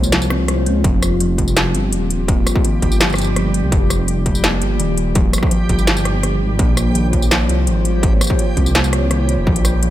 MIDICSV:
0, 0, Header, 1, 6, 480
1, 0, Start_track
1, 0, Tempo, 359281
1, 1130, Time_signature, 4, 2, 24, 8
1, 13228, End_track
2, 0, Start_track
2, 0, Title_t, "Analog synth pad"
2, 0, Program_c, 0, 89
2, 0, Note_on_c, 0, 58, 89
2, 0, Note_on_c, 0, 65, 80
2, 0, Note_on_c, 0, 72, 82
2, 0, Note_on_c, 0, 73, 94
2, 1078, Note_off_c, 0, 73, 0
2, 1079, Note_off_c, 0, 58, 0
2, 1080, Note_off_c, 0, 72, 0
2, 1131, Note_on_c, 0, 55, 84
2, 1133, Note_on_c, 0, 67, 95
2, 8757, Note_off_c, 0, 55, 0
2, 8759, Note_off_c, 0, 65, 0
2, 8759, Note_off_c, 0, 67, 0
2, 8804, Note_on_c, 0, 65, 79
2, 8805, Note_on_c, 0, 72, 82
2, 8806, Note_on_c, 0, 73, 99
2, 8809, Note_on_c, 0, 58, 89
2, 13228, Note_off_c, 0, 58, 0
2, 13228, Note_off_c, 0, 65, 0
2, 13228, Note_off_c, 0, 72, 0
2, 13228, Note_off_c, 0, 73, 0
2, 13228, End_track
3, 0, Start_track
3, 0, Title_t, "Synth texture"
3, 0, Program_c, 1, 99
3, 1116, Note_on_c, 1, 67, 86
3, 1118, Note_on_c, 1, 55, 86
3, 13228, Note_off_c, 1, 55, 0
3, 13228, Note_off_c, 1, 67, 0
3, 13228, End_track
4, 0, Start_track
4, 0, Title_t, "Kalimba"
4, 0, Program_c, 2, 108
4, 166, Note_on_c, 2, 53, 83
4, 307, Note_off_c, 2, 53, 0
4, 409, Note_on_c, 2, 60, 107
4, 626, Note_off_c, 2, 60, 0
4, 652, Note_on_c, 2, 65, 78
4, 868, Note_off_c, 2, 65, 0
4, 891, Note_on_c, 2, 60, 82
4, 1107, Note_off_c, 2, 60, 0
4, 1134, Note_on_c, 2, 53, 81
4, 1271, Note_off_c, 2, 53, 0
4, 1614, Note_on_c, 2, 53, 78
4, 2549, Note_off_c, 2, 53, 0
4, 3055, Note_on_c, 2, 58, 83
4, 3281, Note_off_c, 2, 58, 0
4, 3537, Note_on_c, 2, 51, 76
4, 3762, Note_off_c, 2, 51, 0
4, 4020, Note_on_c, 2, 53, 85
4, 4154, Note_off_c, 2, 53, 0
4, 4496, Note_on_c, 2, 53, 81
4, 5430, Note_off_c, 2, 53, 0
4, 5934, Note_on_c, 2, 58, 82
4, 6161, Note_off_c, 2, 58, 0
4, 6410, Note_on_c, 2, 51, 83
4, 6639, Note_off_c, 2, 51, 0
4, 6891, Note_on_c, 2, 53, 85
4, 7030, Note_off_c, 2, 53, 0
4, 7369, Note_on_c, 2, 53, 79
4, 8306, Note_off_c, 2, 53, 0
4, 8811, Note_on_c, 2, 58, 83
4, 9039, Note_off_c, 2, 58, 0
4, 9291, Note_on_c, 2, 51, 78
4, 9519, Note_off_c, 2, 51, 0
4, 9773, Note_on_c, 2, 53, 84
4, 9911, Note_off_c, 2, 53, 0
4, 10254, Note_on_c, 2, 53, 81
4, 11189, Note_off_c, 2, 53, 0
4, 11692, Note_on_c, 2, 58, 88
4, 11920, Note_off_c, 2, 58, 0
4, 12177, Note_on_c, 2, 51, 78
4, 12402, Note_off_c, 2, 51, 0
4, 12654, Note_on_c, 2, 53, 85
4, 12791, Note_off_c, 2, 53, 0
4, 13134, Note_on_c, 2, 53, 80
4, 13228, Note_off_c, 2, 53, 0
4, 13228, End_track
5, 0, Start_track
5, 0, Title_t, "Detuned saw bass"
5, 0, Program_c, 3, 39
5, 0, Note_on_c, 3, 36, 108
5, 892, Note_on_c, 3, 37, 91
5, 912, Note_off_c, 3, 36, 0
5, 1113, Note_off_c, 3, 37, 0
5, 1126, Note_on_c, 3, 29, 102
5, 2313, Note_off_c, 3, 29, 0
5, 2335, Note_on_c, 3, 31, 101
5, 2579, Note_on_c, 3, 27, 105
5, 2599, Note_off_c, 3, 31, 0
5, 3280, Note_off_c, 3, 27, 0
5, 3774, Note_on_c, 3, 31, 108
5, 4839, Note_off_c, 3, 31, 0
5, 4862, Note_on_c, 3, 36, 81
5, 4966, Note_off_c, 3, 36, 0
5, 4971, Note_on_c, 3, 29, 107
5, 6156, Note_off_c, 3, 29, 0
5, 6173, Note_on_c, 3, 31, 103
5, 6409, Note_on_c, 3, 27, 106
5, 6430, Note_off_c, 3, 31, 0
5, 7115, Note_off_c, 3, 27, 0
5, 7608, Note_on_c, 3, 31, 107
5, 8571, Note_on_c, 3, 32, 94
5, 8591, Note_off_c, 3, 31, 0
5, 8792, Note_off_c, 3, 32, 0
5, 8807, Note_on_c, 3, 34, 101
5, 9994, Note_off_c, 3, 34, 0
5, 10011, Note_on_c, 3, 36, 106
5, 10250, Note_on_c, 3, 32, 108
5, 10270, Note_off_c, 3, 36, 0
5, 10955, Note_off_c, 3, 32, 0
5, 11450, Note_on_c, 3, 36, 102
5, 12517, Note_off_c, 3, 36, 0
5, 12533, Note_on_c, 3, 29, 81
5, 12641, Note_off_c, 3, 29, 0
5, 12651, Note_on_c, 3, 34, 106
5, 13228, Note_off_c, 3, 34, 0
5, 13228, End_track
6, 0, Start_track
6, 0, Title_t, "Drums"
6, 46, Note_on_c, 9, 54, 41
6, 165, Note_on_c, 9, 38, 116
6, 165, Note_on_c, 9, 42, 82
6, 180, Note_off_c, 9, 54, 0
6, 291, Note_on_c, 9, 54, 39
6, 299, Note_off_c, 9, 38, 0
6, 299, Note_off_c, 9, 42, 0
6, 406, Note_on_c, 9, 37, 66
6, 406, Note_on_c, 9, 42, 69
6, 424, Note_off_c, 9, 54, 0
6, 539, Note_off_c, 9, 37, 0
6, 539, Note_off_c, 9, 42, 0
6, 646, Note_on_c, 9, 37, 58
6, 646, Note_on_c, 9, 42, 83
6, 780, Note_off_c, 9, 37, 0
6, 780, Note_off_c, 9, 42, 0
6, 888, Note_on_c, 9, 42, 69
6, 1021, Note_off_c, 9, 42, 0
6, 1126, Note_on_c, 9, 36, 116
6, 1128, Note_on_c, 9, 42, 85
6, 1260, Note_off_c, 9, 36, 0
6, 1261, Note_off_c, 9, 42, 0
6, 1370, Note_on_c, 9, 37, 57
6, 1370, Note_on_c, 9, 42, 42
6, 1370, Note_on_c, 9, 54, 67
6, 1503, Note_off_c, 9, 37, 0
6, 1503, Note_off_c, 9, 42, 0
6, 1503, Note_off_c, 9, 54, 0
6, 1609, Note_on_c, 9, 42, 87
6, 1743, Note_off_c, 9, 42, 0
6, 1847, Note_on_c, 9, 36, 60
6, 1850, Note_on_c, 9, 42, 65
6, 1973, Note_on_c, 9, 54, 37
6, 1981, Note_off_c, 9, 36, 0
6, 1984, Note_off_c, 9, 42, 0
6, 2092, Note_on_c, 9, 38, 124
6, 2092, Note_on_c, 9, 42, 84
6, 2106, Note_off_c, 9, 54, 0
6, 2225, Note_off_c, 9, 38, 0
6, 2225, Note_off_c, 9, 42, 0
6, 2332, Note_on_c, 9, 42, 73
6, 2466, Note_off_c, 9, 42, 0
6, 2572, Note_on_c, 9, 42, 82
6, 2705, Note_off_c, 9, 42, 0
6, 2812, Note_on_c, 9, 42, 75
6, 2945, Note_off_c, 9, 42, 0
6, 3051, Note_on_c, 9, 36, 127
6, 3053, Note_on_c, 9, 42, 82
6, 3184, Note_off_c, 9, 36, 0
6, 3187, Note_off_c, 9, 42, 0
6, 3294, Note_on_c, 9, 37, 58
6, 3294, Note_on_c, 9, 42, 42
6, 3294, Note_on_c, 9, 54, 66
6, 3413, Note_on_c, 9, 36, 114
6, 3428, Note_off_c, 9, 37, 0
6, 3428, Note_off_c, 9, 42, 0
6, 3428, Note_off_c, 9, 54, 0
6, 3534, Note_on_c, 9, 42, 88
6, 3547, Note_off_c, 9, 36, 0
6, 3668, Note_off_c, 9, 42, 0
6, 3773, Note_on_c, 9, 36, 67
6, 3773, Note_on_c, 9, 42, 66
6, 3896, Note_on_c, 9, 54, 34
6, 3906, Note_off_c, 9, 36, 0
6, 3907, Note_off_c, 9, 42, 0
6, 4015, Note_on_c, 9, 38, 127
6, 4015, Note_on_c, 9, 42, 83
6, 4030, Note_off_c, 9, 54, 0
6, 4138, Note_on_c, 9, 54, 17
6, 4149, Note_off_c, 9, 38, 0
6, 4149, Note_off_c, 9, 42, 0
6, 4176, Note_off_c, 9, 54, 0
6, 4176, Note_on_c, 9, 54, 20
6, 4195, Note_on_c, 9, 37, 68
6, 4215, Note_off_c, 9, 54, 0
6, 4215, Note_on_c, 9, 54, 23
6, 4254, Note_off_c, 9, 54, 0
6, 4254, Note_on_c, 9, 42, 70
6, 4254, Note_on_c, 9, 54, 27
6, 4295, Note_off_c, 9, 54, 0
6, 4295, Note_on_c, 9, 54, 29
6, 4328, Note_off_c, 9, 37, 0
6, 4333, Note_off_c, 9, 54, 0
6, 4333, Note_on_c, 9, 54, 32
6, 4388, Note_off_c, 9, 42, 0
6, 4467, Note_off_c, 9, 54, 0
6, 4494, Note_on_c, 9, 37, 54
6, 4494, Note_on_c, 9, 42, 84
6, 4627, Note_off_c, 9, 37, 0
6, 4627, Note_off_c, 9, 42, 0
6, 4734, Note_on_c, 9, 42, 74
6, 4867, Note_off_c, 9, 42, 0
6, 4971, Note_on_c, 9, 36, 127
6, 4973, Note_on_c, 9, 42, 88
6, 5105, Note_off_c, 9, 36, 0
6, 5107, Note_off_c, 9, 42, 0
6, 5214, Note_on_c, 9, 37, 56
6, 5214, Note_on_c, 9, 42, 40
6, 5214, Note_on_c, 9, 54, 67
6, 5348, Note_off_c, 9, 37, 0
6, 5348, Note_off_c, 9, 42, 0
6, 5348, Note_off_c, 9, 54, 0
6, 5452, Note_on_c, 9, 42, 85
6, 5586, Note_off_c, 9, 42, 0
6, 5690, Note_on_c, 9, 36, 65
6, 5690, Note_on_c, 9, 42, 65
6, 5811, Note_on_c, 9, 54, 34
6, 5823, Note_off_c, 9, 36, 0
6, 5823, Note_off_c, 9, 42, 0
6, 5928, Note_on_c, 9, 38, 124
6, 5928, Note_on_c, 9, 42, 87
6, 5945, Note_off_c, 9, 54, 0
6, 6062, Note_off_c, 9, 38, 0
6, 6062, Note_off_c, 9, 42, 0
6, 6167, Note_on_c, 9, 42, 72
6, 6301, Note_off_c, 9, 42, 0
6, 6407, Note_on_c, 9, 42, 86
6, 6541, Note_off_c, 9, 42, 0
6, 6647, Note_on_c, 9, 42, 70
6, 6780, Note_off_c, 9, 42, 0
6, 6884, Note_on_c, 9, 42, 80
6, 6888, Note_on_c, 9, 36, 127
6, 7018, Note_off_c, 9, 42, 0
6, 7021, Note_off_c, 9, 36, 0
6, 7126, Note_on_c, 9, 37, 52
6, 7126, Note_on_c, 9, 42, 39
6, 7126, Note_on_c, 9, 54, 69
6, 7188, Note_off_c, 9, 37, 0
6, 7188, Note_on_c, 9, 37, 43
6, 7249, Note_off_c, 9, 37, 0
6, 7249, Note_on_c, 9, 37, 35
6, 7250, Note_on_c, 9, 36, 115
6, 7259, Note_off_c, 9, 42, 0
6, 7259, Note_off_c, 9, 54, 0
6, 7306, Note_off_c, 9, 37, 0
6, 7306, Note_on_c, 9, 37, 28
6, 7364, Note_on_c, 9, 42, 83
6, 7384, Note_off_c, 9, 36, 0
6, 7440, Note_off_c, 9, 37, 0
6, 7498, Note_off_c, 9, 42, 0
6, 7606, Note_on_c, 9, 42, 61
6, 7608, Note_on_c, 9, 36, 64
6, 7730, Note_on_c, 9, 54, 36
6, 7740, Note_off_c, 9, 42, 0
6, 7742, Note_off_c, 9, 36, 0
6, 7847, Note_on_c, 9, 38, 127
6, 7847, Note_on_c, 9, 42, 81
6, 7864, Note_off_c, 9, 54, 0
6, 7972, Note_on_c, 9, 54, 37
6, 7981, Note_off_c, 9, 38, 0
6, 7981, Note_off_c, 9, 42, 0
6, 8087, Note_on_c, 9, 37, 60
6, 8087, Note_on_c, 9, 42, 72
6, 8105, Note_off_c, 9, 54, 0
6, 8221, Note_off_c, 9, 37, 0
6, 8221, Note_off_c, 9, 42, 0
6, 8329, Note_on_c, 9, 37, 50
6, 8329, Note_on_c, 9, 42, 79
6, 8462, Note_off_c, 9, 37, 0
6, 8462, Note_off_c, 9, 42, 0
6, 8806, Note_on_c, 9, 36, 118
6, 8807, Note_on_c, 9, 42, 79
6, 8940, Note_off_c, 9, 36, 0
6, 8940, Note_off_c, 9, 42, 0
6, 9047, Note_on_c, 9, 37, 54
6, 9047, Note_on_c, 9, 42, 38
6, 9047, Note_on_c, 9, 54, 72
6, 9180, Note_off_c, 9, 37, 0
6, 9180, Note_off_c, 9, 42, 0
6, 9180, Note_off_c, 9, 54, 0
6, 9287, Note_on_c, 9, 42, 83
6, 9421, Note_off_c, 9, 42, 0
6, 9526, Note_on_c, 9, 36, 61
6, 9527, Note_on_c, 9, 42, 63
6, 9651, Note_on_c, 9, 54, 38
6, 9660, Note_off_c, 9, 36, 0
6, 9661, Note_off_c, 9, 42, 0
6, 9770, Note_on_c, 9, 38, 120
6, 9770, Note_on_c, 9, 42, 77
6, 9785, Note_off_c, 9, 54, 0
6, 9903, Note_off_c, 9, 38, 0
6, 9903, Note_off_c, 9, 42, 0
6, 10012, Note_on_c, 9, 42, 66
6, 10146, Note_off_c, 9, 42, 0
6, 10249, Note_on_c, 9, 42, 78
6, 10383, Note_off_c, 9, 42, 0
6, 10489, Note_on_c, 9, 42, 68
6, 10623, Note_off_c, 9, 42, 0
6, 10728, Note_on_c, 9, 36, 121
6, 10730, Note_on_c, 9, 42, 79
6, 10862, Note_off_c, 9, 36, 0
6, 10864, Note_off_c, 9, 42, 0
6, 10970, Note_on_c, 9, 37, 58
6, 10970, Note_on_c, 9, 42, 38
6, 10970, Note_on_c, 9, 54, 70
6, 11010, Note_off_c, 9, 54, 0
6, 11010, Note_on_c, 9, 54, 57
6, 11049, Note_off_c, 9, 54, 0
6, 11049, Note_on_c, 9, 54, 46
6, 11090, Note_on_c, 9, 36, 100
6, 11103, Note_off_c, 9, 37, 0
6, 11103, Note_off_c, 9, 42, 0
6, 11183, Note_off_c, 9, 54, 0
6, 11209, Note_on_c, 9, 42, 77
6, 11224, Note_off_c, 9, 36, 0
6, 11343, Note_off_c, 9, 42, 0
6, 11449, Note_on_c, 9, 36, 60
6, 11450, Note_on_c, 9, 42, 64
6, 11573, Note_on_c, 9, 54, 38
6, 11583, Note_off_c, 9, 36, 0
6, 11583, Note_off_c, 9, 42, 0
6, 11690, Note_on_c, 9, 38, 117
6, 11690, Note_on_c, 9, 42, 81
6, 11707, Note_off_c, 9, 54, 0
6, 11812, Note_on_c, 9, 54, 41
6, 11824, Note_off_c, 9, 38, 0
6, 11824, Note_off_c, 9, 42, 0
6, 11928, Note_on_c, 9, 37, 63
6, 11928, Note_on_c, 9, 42, 67
6, 11945, Note_off_c, 9, 54, 0
6, 12062, Note_off_c, 9, 37, 0
6, 12062, Note_off_c, 9, 42, 0
6, 12167, Note_on_c, 9, 37, 54
6, 12167, Note_on_c, 9, 42, 77
6, 12301, Note_off_c, 9, 37, 0
6, 12301, Note_off_c, 9, 42, 0
6, 12408, Note_on_c, 9, 42, 65
6, 12542, Note_off_c, 9, 42, 0
6, 12650, Note_on_c, 9, 36, 111
6, 12771, Note_on_c, 9, 42, 77
6, 12783, Note_off_c, 9, 36, 0
6, 12889, Note_off_c, 9, 42, 0
6, 12889, Note_on_c, 9, 37, 57
6, 12889, Note_on_c, 9, 42, 38
6, 12889, Note_on_c, 9, 54, 72
6, 13022, Note_off_c, 9, 37, 0
6, 13022, Note_off_c, 9, 42, 0
6, 13022, Note_off_c, 9, 54, 0
6, 13128, Note_on_c, 9, 42, 84
6, 13228, Note_off_c, 9, 42, 0
6, 13228, End_track
0, 0, End_of_file